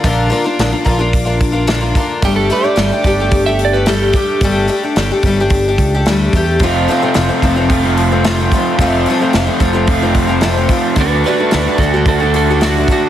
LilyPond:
<<
  \new Staff \with { instrumentName = "Electric slide guitar" } { \time 4/4 \key g \lydian \tempo 4 = 110 r1 | g'16 a'16 b'16 d''4. e''16 d''16 b'16 a'8 g'8 | r1 | r1 |
r1 | <d' b'>8 <d' b'>8 <d' b'>8 <fis' a'>8 <fis' a'>8 <fis' a'>8 <d' fis'>8 <d' fis'>8 | }
  \new Staff \with { instrumentName = "Twelve-string acoustic guitar" } { \time 4/4 \key g \lydian <bes, d bes d' f'>8 <d bes d' f'>16 <bes d' f'>16 <bes, d bes d' f'>16 <bes d' f'>16 <d bes d' f'>16 <bes d' f'>8 <bes d' f'>8 <bes d' f'>16 <bes, d bes d' f'>16 <bes d' f'>16 <d bes d' f'>8 | <g a d' g'>8 <g a d' g'>16 <a d' g'>16 <g a d' g'>16 <a d' g'>16 <g a d' g'>16 <a d' g'>8 <a d' g'>8 <a d' g'>16 <g a d' g'>8 <g a d' g'>8 | <g a d' g'>8 <g a d' g'>16 <a d' g'>16 <g a d' g'>16 <a d' g'>16 <g a d' g'>16 <a d' g'>8 <a d' g'>8 <a d' g'>16 <g a d' g'>8 <g a d' g'>8 | <f, c f a c' f'>8 <f a c' f'>16 <f a c' f'>16 <f, c f a c' f'>16 <f a c' f'>16 <f a c' f'>16 <f a c' f'>8 <f a c' f'>8 <f a c' f'>16 <f, c f a c' f'>16 <f a c' f'>16 <f a c' f'>8 |
<f, c f a c' f'>8 <f a c' f'>16 <f a c' f'>16 <f, c f a c' f'>16 <f a c' f'>16 <f a c' f'>16 <f a c' f'>8 <f a c' f'>8 <f a c' f'>16 <f, c f a c' f'>16 <f a c' f'>16 <f a c' f'>8 | <d a d' fis'>8 <d a d' fis'>16 <a d' fis'>16 <d a d' fis'>16 <a d' fis'>16 <d a d' fis'>16 <a d' fis'>8 <a d' fis'>8 <a d' fis'>16 <d a d' fis'>16 <a d' fis'>16 <d a d' fis'>8 | }
  \new Staff \with { instrumentName = "Overdriven electric guitar" } { \time 4/4 \key g \lydian r1 | r1 | r1 | <f, c f a c' f'>2 <f, c f a c' f'>2 |
<f, c f a c' f'>2 <f, c f a c' f'>2 | <d a d' fis'>2 <d a d' fis'>2 | }
  \new Staff \with { instrumentName = "Fingered electric bass" } { \clef bass \time 4/4 \key g \lydian bes,,8 r8 bes,,16 r16 bes,,2 r8 | g,,8 r8 g,,16 r16 g,,2 r8 | g,,8 r8 g,,16 r16 g,,4 cis,8 d,8 e,8 | f,,8 r8 f,,16 r16 f,,2 r8 |
f,,8 r8 f,,16 r16 f,,2 r8 | d,8 r8 d,16 r16 d,2 r8 | }
  \new DrumStaff \with { instrumentName = "Drums" } \drummode { \time 4/4 <hho bd>8 hho8 <hho sn>8 <hho bd>8 <hho bd>8 <hho bd>8 <hho sn>8 <hho bd>8 | <hho bd>8 hho8 <hho sn>8 <hho bd>8 <hho bd>8 hho8 <hho sn>8 <hho bd>8 | <hho bd>8 hho8 <hho sn>8 <hho bd>8 <hho bd>8 <hho bd>8 <hho sn>8 <hho bd>8 | <hho bd>8 hho8 <hho sn>8 <hho bd>8 <hho bd>8 hho8 <hho sn>8 <hho bd>8 |
<hho bd>8 hho8 <hho sn>8 <hho bd>8 <hho bd>8 <hho bd>8 <hho sn>8 <hho bd>8 | <hho bd>8 hho8 <hho sn>8 <hho bd>8 <hho bd>8 hho8 <hho sn>8 <hho bd>8 | }
>>